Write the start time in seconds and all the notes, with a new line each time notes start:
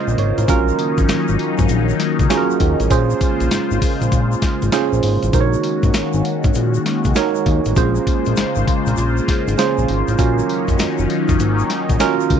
Already playing: C#3 G#3 A#3 C#4 F4 G#4 C5 D#5
0.08 A#1, shaker
0.18 G#1 C#5, closed hi-hat
0.38 A1 A#4, closed hi-hat, shaker
0.47 A#1 D#3 F#3 C#4 D#4 F4 F#4 A#4, kick, closed hi-hat, tambourine, shaker
0.68 shaker
0.79 closed hi-hat, tambourine
0.98 G#1, kick, closed hi-hat, shaker
1.09 G#1, snare, closed hi-hat, tambourine, shaker
1.28 G#1, shaker
1.39 closed hi-hat, tambourine
1.58 G#1, kick, closed hi-hat, shaker
1.69 A#1, closed hi-hat, shaker
1.89 shaker
2.00 snare, closed hi-hat, tambourine
2.19 C#2, kick, closed hi-hat, shaker
2.30 C#4 F4 F#4 G#4, snare, closed hi-hat, tambourine, shaker
2.37 A#4
2.50 shaker
2.60 D#2, kick, closed hi-hat, tambourine
2.80 A1, closed hi-hat, shaker
2.90 A#1 C#3 G#3 A#3 C#4 F4 G#4 C5, kick, closed hi-hat, tambourine, shaker
3.10 shaker
3.21 kick, closed hi-hat, tambourine, shaker
3.40 A#1, closed hi-hat, shaker
3.51 G#1, snare, closed hi-hat, tambourine, shaker
3.71 G#1, shaker
3.82 kick, open hi-hat, tambourine, shaker
4.01 A#1, closed hi-hat, shaker
4.12 A#1, kick, closed hi-hat, shaker
4.32 shaker
4.42 kick, snare, closed hi-hat, tambourine, shaker
4.62 G#1, closed hi-hat, shaker
4.72 C#4 F4 G#4 C5, snare, closed hi-hat, tambourine, shaker
4.93 A#1, shaker
5.03 G#1, open hi-hat, tambourine
5.23 A1, closed hi-hat, shaker
5.33 A#1 D#3 G#3 C#4 D#4 F#4 A#4 C5, kick, closed hi-hat, tambourine, shaker
5.41 C#5
5.53 shaker
5.64 closed hi-hat, tambourine
5.83 G#1, kick, closed hi-hat, shaker
5.94 G#1, snare, closed hi-hat, tambourine, shaker
6.13 G#1, shaker
6.25 closed hi-hat, tambourine
6.44 G#1, kick, closed hi-hat, shaker
6.54 A#1, closed hi-hat, shaker
6.74 shaker
6.86 snare, closed hi-hat, tambourine
7.04 C#2, kick, closed hi-hat, shaker
7.15 D#4 F#4 A#4 C#5, snare, closed hi-hat, tambourine, shaker
7.35 shaker
7.46 D#2, kick, closed hi-hat, tambourine
7.65 A1, closed hi-hat, shaker
7.76 A#1 C#3 C#4 F4 G#4 C5, kick, closed hi-hat, tambourine, shaker
7.95 shaker
8.07 kick, closed hi-hat, tambourine
8.25 A#1, closed hi-hat, shaker
8.36 G#1, snare, closed hi-hat, tambourine, shaker
8.55 G#1, shaker
8.68 kick, closed hi-hat, tambourine
8.87 A#1, closed hi-hat, shaker
8.97 A#1, closed hi-hat, shaker
9.17 shaker
9.28 kick, snare, closed hi-hat, tambourine
9.48 G#1, closed hi-hat, shaker
9.58 C#4 F4 G#4 C5, snare, closed hi-hat, tambourine, shaker
9.78 A#1, shaker
9.88 G#1, closed hi-hat, tambourine
10.08 A1, closed hi-hat, shaker
10.18 A#1 D#3 F#3 C#4 D#4 F4 F#4 A#4, kick, closed hi-hat, tambourine, shaker
10.39 shaker
10.49 closed hi-hat, tambourine
10.68 F#1, kick, closed hi-hat, shaker
10.79 F#1, snare, closed hi-hat, tambourine, shaker
10.98 F#1, shaker
11.10 closed hi-hat, tambourine
11.29 F#1, kick, closed hi-hat, shaker
11.40 G#1, closed hi-hat, shaker
11.59 shaker
11.70 snare, closed hi-hat, tambourine
11.89 A#1, kick, closed hi-hat, shaker
12.00 C#4 F4 F#4 A#4, snare, closed hi-hat, tambourine, shaker
12.20 shaker
12.30 C#2, kick, closed hi-hat, tambourine